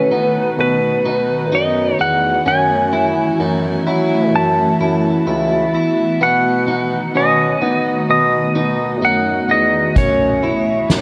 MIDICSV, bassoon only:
0, 0, Header, 1, 2, 480
1, 0, Start_track
1, 0, Tempo, 937500
1, 1261, Time_signature, 4, 2, 24, 8
1, 5639, End_track
2, 0, Start_track
2, 0, Title_t, "Bassoon"
2, 0, Program_c, 0, 70
2, 61, Note_on_c, 0, 59, 80
2, 272, Note_off_c, 0, 59, 0
2, 298, Note_on_c, 0, 47, 93
2, 511, Note_off_c, 0, 47, 0
2, 539, Note_on_c, 0, 47, 76
2, 778, Note_on_c, 0, 42, 76
2, 785, Note_off_c, 0, 47, 0
2, 990, Note_off_c, 0, 42, 0
2, 1019, Note_on_c, 0, 40, 77
2, 1231, Note_off_c, 0, 40, 0
2, 1258, Note_on_c, 0, 42, 100
2, 1682, Note_off_c, 0, 42, 0
2, 1740, Note_on_c, 0, 42, 94
2, 1952, Note_off_c, 0, 42, 0
2, 1980, Note_on_c, 0, 54, 91
2, 2220, Note_on_c, 0, 42, 88
2, 2228, Note_off_c, 0, 54, 0
2, 2432, Note_off_c, 0, 42, 0
2, 2460, Note_on_c, 0, 42, 83
2, 2672, Note_off_c, 0, 42, 0
2, 2700, Note_on_c, 0, 37, 77
2, 2911, Note_off_c, 0, 37, 0
2, 3181, Note_on_c, 0, 47, 92
2, 3604, Note_off_c, 0, 47, 0
2, 3661, Note_on_c, 0, 47, 92
2, 3872, Note_off_c, 0, 47, 0
2, 3900, Note_on_c, 0, 59, 87
2, 4112, Note_off_c, 0, 59, 0
2, 4142, Note_on_c, 0, 47, 91
2, 4353, Note_off_c, 0, 47, 0
2, 4382, Note_on_c, 0, 47, 76
2, 4621, Note_on_c, 0, 42, 77
2, 4629, Note_off_c, 0, 47, 0
2, 4832, Note_off_c, 0, 42, 0
2, 4861, Note_on_c, 0, 40, 67
2, 5072, Note_off_c, 0, 40, 0
2, 5100, Note_on_c, 0, 42, 95
2, 5401, Note_off_c, 0, 42, 0
2, 5583, Note_on_c, 0, 42, 88
2, 5639, Note_off_c, 0, 42, 0
2, 5639, End_track
0, 0, End_of_file